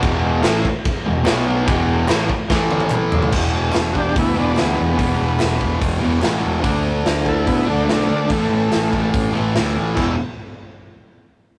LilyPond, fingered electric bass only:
\new Staff \with { instrumentName = "Fingered electric bass" } { \clef bass \time 4/4 \key a \major \tempo 4 = 145 e,,4 a,,8 r4 e,,8 b,,4 | e,,4 a,,8 r8 a,,2 | e,,4 e,,4 d,8 e,,8 d,8 e,8 | e,,8 e,,8 e,,8 e,,8 e,,8 e,,8 a,,8 e,,8 |
d,4 d,4 b,8 d,8 b,,8 d8 | a,,8 a,,8 a,,8 a,,8 a,,8 a,,8 d,8 a,,8 | e,,8 r2. r8 | }